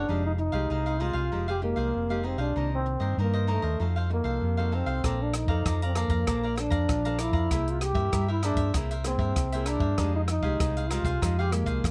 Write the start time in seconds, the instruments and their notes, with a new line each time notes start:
Already playing: trombone D4
0.08 fingered electric bass F1, nylon-string guitar F3 G#3 D#4 G4, cavaquinho D#4 G#4 C5 F5
0.26 trombone D#4
0.38 trombone D#4, muted cavaquinho stroke
0.52 fingered electric bass C2, nylon-string guitar G#3 D#4 G4, cavaquinho G#4 C5 F5
0.70 fingered electric bass C2, nylon-string guitar C3, cavaquinho D#4 G#4 C5 F5
0.86 cavaquinho G#4 C5 F5
1.00 nylon-string guitar G#3 D#4 G4, cavaquinho D#4 G#4 C5 F5, trombone F4
1.13 fingered electric bass C2, cavaquinho G#4 C5 F5
1.32 fingered electric bass F1, nylon-string guitar F3 G#3 D#4 G4, cavaquinho D#4 G#4 C5 F5
1.48 trombone G4, cavaquinho G#4 C5 F5
1.62 nylon-string guitar G#3 D#4 G4, trombone A#3, muted cavaquinho stroke
1.76 fingered electric bass C2, cavaquinho G#4 C5 F5
1.93 fingered electric bass F1, nylon-string guitar C3
2.09 nylon-string guitar G#3 D#4 G4, cavaquinho G#4 C5 F5
2.23 trombone C4, cavaquinho D#4 G#4 C5 F5
2.38 fingered electric bass B1, trombone D4, cavaquinho G#4 C5 F5
2.55 fingered electric bass C2, nylon-string guitar C3 D#3 A#3 D4, cavaquinho D#4 A#4 C5 D#5
2.75 trombone C4
2.86 muted cavaquinho stroke
2.99 fingered electric bass G2, nylon-string guitar D#3 A#3 D4, cavaquinho A#4 C5 D#5
3.17 nylon-string guitar G2, fingered electric bass G2, cavaquinho D#4 A#4 C5 D#5
3.21 trombone A#3
3.33 cavaquinho A#4 C5 D#5
3.47 nylon-string guitar D#3 A#3 D4, trombone A3, cavaquinho D#4 A#4 C5 D#5
3.62 fingered electric bass D#2, cavaquinho A#4 C5 D#5
3.79 fingered electric bass F2, nylon-string guitar F3 A3 D#4 F#4, cavaquinho D#4 A4 C5 F5
3.96 cavaquinho A4 C5 F5
4.09 nylon-string guitar A3 D#4 F#4, trombone A#3, muted cavaquinho stroke
4.24 fingered electric bass C2, cavaquinho A4 C5 F5
4.42 fingered electric bass F2, nylon-string guitar C3
4.57 nylon-string guitar A3 D#4 F#4, cavaquinho A4 C5 F5
4.72 trombone C4, cavaquinho D#4 A4 C5 F5
4.86 fingered electric bass C2, cavaquinho A4 C5 F5
5.04 fingered electric bass A#1, nylon-string guitar A#3 D4 A4 C5, cavaquinho A4 D5 F5 A#5, kick, cross-stick, closed hi-hat
5.23 trombone D4
5.34 trombone D#4, muted cavaquinho stroke, cross-stick, closed hi-hat
5.46 fingered electric bass F2, nylon-string guitar A4 C5, cavaquinho D5 F5 A#5, kick
5.65 fingered electric bass F2, nylon-string guitar F3, cavaquinho A4 D5 F5 A#5, kick, cross-stick, closed hi-hat
5.82 trombone C4, cavaquinho D5 F5 A#5, closed hi-hat
5.95 trombone A#3, nylon-string guitar D4 A4 C5, cavaquinho A4 D5 F5 A#5, cross-stick, closed hi-hat
6.08 fingered electric bass F2, cavaquinho D5 F5 A#5, kick, closed hi-hat
6.27 fingered electric bass A#1, nylon-string guitar A#3 D4 A4 C5, cavaquinho A4 D5 F5 A#5, kick, cross-stick, closed hi-hat
6.43 cavaquinho D5 F5 A#5
6.56 nylon-string guitar D4 A4 C5, trombone D4, muted cavaquinho stroke, cross-stick, closed hi-hat
6.70 fingered electric bass F2, cavaquinho D5 F5 A#5, kick, closed hi-hat
6.89 fingered electric bass A#1, nylon-string guitar F3, kick, cross-stick, closed hi-hat
7.05 nylon-string guitar D4 A4 C5, cavaquinho D5 F5 A#5, closed hi-hat
7.19 trombone E4, cavaquinho A4 D5 F5 A#5, cross-stick, closed hi-hat
7.31 fingered electric bass F2, cavaquinho D5 F5 A#5, kick
7.51 fingered electric bass C2, nylon-string guitar C3 A#3 E4 G#4, cavaquinho E4 A#4 C5 E5, kick, cross-stick, closed hi-hat
7.68 trombone F4, closed hi-hat
7.81 trombone G4, muted cavaquinho stroke, cross-stick, closed hi-hat
7.93 fingered electric bass G2, nylon-string guitar A#3 E4, cavaquinho A#4 C5 E5, kick
8.12 fingered electric bass G2, nylon-string guitar G3, cavaquinho E4 A#4 C5 E5, kick, cross-stick, closed hi-hat
8.28 trombone E4, cavaquinho A#4 C5 E5
8.42 nylon-string guitar A#3 E4 G#4, trombone D4, cavaquinho E4 A#4 C5 E5, cross-stick, closed hi-hat
8.55 fingered electric bass G2, cavaquinho A#4 C5 E5, kick, closed hi-hat
8.74 fingered electric bass C2, nylon-string guitar C3 A#3 E4 G#4, cavaquinho E4 A#4 C5 E5, kick, cross-stick, closed hi-hat
8.91 cavaquinho A#4 C5 E5, closed hi-hat
9.04 nylon-string guitar A#3 E4 G#4, trombone C4, muted cavaquinho stroke, cross-stick, closed hi-hat
9.17 fingered electric bass G2, cavaquinho A#4 C5 E5, kick
9.36 fingered electric bass C2, kick, cross-stick, closed hi-hat
9.52 nylon-string guitar A#3 E4 G#4, cavaquinho A#4 C5 E5, closed hi-hat
9.66 trombone D4, cavaquinho E4 A#4 C5 E5, cross-stick, closed hi-hat
9.79 fingered electric bass G2, cavaquinho A#4 C5 E5, kick
9.98 fingered electric bass F2, nylon-string guitar F3 G#3 D#4 G4, cavaquinho D#4 G#4 C5 F5, kick, cross-stick, closed hi-hat
10.16 trombone D#4
10.28 trombone D#4, muted cavaquinho stroke, cross-stick, closed hi-hat
10.41 fingered electric bass C2, nylon-string guitar G#3 D#4 G4, cavaquinho G#4 C5 F5, kick
10.60 fingered electric bass C2, nylon-string guitar C3, cavaquinho D#4 G#4 C5 F5, kick, cross-stick, closed hi-hat
10.77 cavaquinho G#4 C5 F5, closed hi-hat
10.90 nylon-string guitar G#3 D#4 G4, cavaquinho D#4 G#4 C5 F5, trombone F4, cross-stick, closed hi-hat
11.02 fingered electric bass C2, cavaquinho G#4 C5 F5, kick, closed hi-hat
11.21 fingered electric bass F2, nylon-string guitar F3 G#3 D#4 G4, cavaquinho D#4 G#4 C5 F5, kick, cross-stick, closed hi-hat
11.39 trombone G4, cavaquinho G#4 C5 F5
11.52 nylon-string guitar G#3 D#4 G4, trombone A#3, muted cavaquinho stroke, cross-stick, closed hi-hat
11.64 fingered electric bass C2, cavaquinho G#4 C5 F5, kick, closed hi-hat
11.84 fingered electric bass F2, nylon-string guitar C3, kick, cross-stick, closed hi-hat